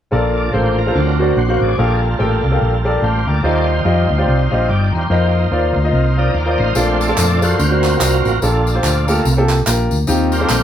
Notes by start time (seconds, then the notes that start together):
0.11 A#1 A#2 F3 A#3 D4 F4 A4 A#4 D5
0.37 A4 D5
0.53 A1 F4 G4 A4 A#4 C5
0.78 F4 A#4
0.87 F4 A4 A#4 C5
0.95 D2 D3 F#3 C4 D4 A4
1.00 A#4
1.19 F#4 A#4 C5 D5
1.37 A#1 C5 F#5
1.49 F#4 A#4 C5 F5
1.61 A1 G#4 D5
1.78 A#1 A#2 G3 A#3 F4 G4 A4 A#4 F5
2.19 A1 G4 A4 A#4 G5
2.45 C2
2.52 G4 A4 A#4 F5
2.62 A#1
2.85 G4 A4 A#4 D5
3.02 A1 G4 C5 F5 A5
3.27 D2 A4 D5 G5 A#5
3.43 D#2 D#3 G3 D#4 F4 G4 C5 D#5
3.84 F2 F4 G4 C5 D#5
4.10 D2
4.18 F4 G4 C5 D5
4.27 C2
4.51 A#1 F4 G4 C5 D#5
4.68 G1 D5 D#5 G5
4.93 E2 G4 C5 G5 A#5
5.10 F2 A#3 D#4 F4 A#4 B4 C5 D#5
5.16 C5
5.51 D#2 F4 A#4 C5 D5
5.76 D2
5.84 F4 A#4 C5 D#5
5.93 C2
6.17 F4 A#4 C5 D5 D#5 G5
6.34 D#2 D5 F5 G5
6.46 F4 A#4 C5 D5 D#5
6.58 A1 C5 F5
6.75 A#1 A#2 A3 C4 D4 F4 A4 A#4 D5, tambourine
7.01 F4 A4 D5, tambourine
7.08 F4 A4 A#4 D5
7.18 F2, clap, tambourine
7.41 F4 F#4 A4 A#4 C5 D5, tambourine
7.58 D2 D3 A#3 C4 F#4, tambourine
7.71 D4 F#4 A#4 C5
7.84 clap, tambourine
7.99 C2 D4 F4 F#4 A#4 C5, clap, tambourine
8.25 A1, tambourine
8.42 A#1 A#2 A#3 D4 F4 G4 A4, tambourine
8.67 tambourine
8.74 A#3 F4 G4 C5
8.83 D2, clap, tambourine
9.07 A3 A#3 F4 G4 A4, tambourine
9.25 C2, tambourine
9.37 A#3 F4 G4 A4
9.49 clap, tambourine
9.66 A#1 A#3 F4 G4 A#4, clap, tambourine
9.91 D2, tambourine
10.07 D#2 D#3 C4 D#4 F4 G4, tambourine
10.32 G3 C4 F4 G4 A#4, tambourine
10.40 C4 D#4 F4 A4
10.49 A#1, clap, tambourine